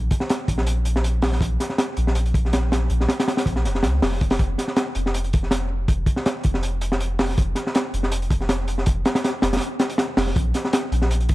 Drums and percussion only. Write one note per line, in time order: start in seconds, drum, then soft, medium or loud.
0.11 kick medium
0.11 closed hi-hat medium
0.20 snare medium
0.29 snare loud
0.29 closed hi-hat medium
0.48 kick medium
0.48 closed hi-hat medium
0.58 snare medium
0.66 closed hi-hat loud
0.85 closed hi-hat medium
0.96 snare medium
1.04 closed hi-hat medium
1.22 snare loud
1.22 open hi-hat medium
1.33 snare soft
1.41 kick loud
1.41 closed hi-hat medium
1.60 snare soft
1.60 closed hi-hat medium
1.70 snare soft
1.78 snare loud
1.78 closed hi-hat medium
1.97 closed hi-hat medium
2.07 snare soft
2.15 closed hi-hat medium
2.26 closed hi-hat soft
2.34 kick medium
2.34 closed hi-hat medium
2.45 snare soft
2.53 snare loud
2.53 closed hi-hat medium
2.72 snare loud
2.72 closed hi-hat medium
2.90 closed hi-hat medium
3.01 snare soft
3.09 snare loud
3.09 closed hi-hat medium
3.20 snare loud
3.20 closed hi-hat medium
3.28 snare loud
3.28 closed hi-hat medium
3.37 snare medium
3.37 closed hi-hat medium
3.46 kick medium
3.46 closed hi-hat medium
3.56 snare medium
3.65 snare soft
3.65 closed hi-hat medium
3.75 snare soft
3.83 snare loud
3.83 closed hi-hat medium
4.02 snare loud
4.02 open hi-hat medium
4.12 snare soft
4.21 kick medium
4.21 closed hi-hat medium
4.30 snare loud
4.30 open hi-hat medium
4.39 kick loud
4.39 closed hi-hat medium
4.58 snare soft
4.58 closed hi-hat medium
4.68 snare soft
4.76 snare loud
4.76 closed hi-hat medium
4.95 closed hi-hat medium
5.06 snare soft
5.14 closed hi-hat medium
5.24 closed hi-hat soft
5.33 kick loud
5.33 closed hi-hat medium
5.43 snare soft
5.51 snare loud
5.51 closed hi-hat medium
5.88 kick loud
5.88 closed hi-hat medium
6.06 kick medium
6.06 closed hi-hat medium
6.16 snare medium
6.26 snare loud
6.26 closed hi-hat medium
6.43 kick medium
6.43 closed hi-hat medium
6.54 snare medium
6.63 closed hi-hat medium
6.81 closed hi-hat medium
6.92 snare medium
7.00 closed hi-hat medium
7.19 snare loud
7.19 open hi-hat medium
7.29 snare soft
7.38 kick loud
7.38 closed hi-hat medium
7.55 snare soft
7.55 closed hi-hat medium
7.67 snare soft
7.75 snare loud
7.75 closed hi-hat medium
7.94 closed hi-hat medium
8.03 snare soft
8.12 closed hi-hat medium
8.22 closed hi-hat soft
8.30 kick medium
8.30 closed hi-hat medium
8.41 snare soft
8.49 snare loud
8.49 closed hi-hat medium
8.68 closed hi-hat medium
8.78 snare soft
8.86 kick loud
8.86 closed hi-hat loud
9.05 snare loud
9.05 closed hi-hat medium
9.15 snare loud
9.15 closed hi-hat medium
9.24 snare medium
9.24 closed hi-hat medium
9.42 snare loud
9.42 closed hi-hat medium
9.53 snare medium
9.53 closed hi-hat medium
9.57 snare medium
9.57 closed hi-hat medium
9.61 closed hi-hat medium
9.79 snare loud
9.79 closed hi-hat medium
9.90 closed hi-hat medium
9.98 snare loud
9.98 closed hi-hat medium
10.17 snare loud
10.17 open hi-hat medium
10.27 snare soft
10.36 kick loud
10.36 closed hi-hat medium
10.54 snare soft
10.54 closed hi-hat medium
10.65 snare soft
10.73 snare loud
10.73 closed hi-hat medium
10.92 closed hi-hat medium
11.02 snare soft
11.11 closed hi-hat medium
11.20 closed hi-hat soft
11.29 kick loud
11.29 closed hi-hat medium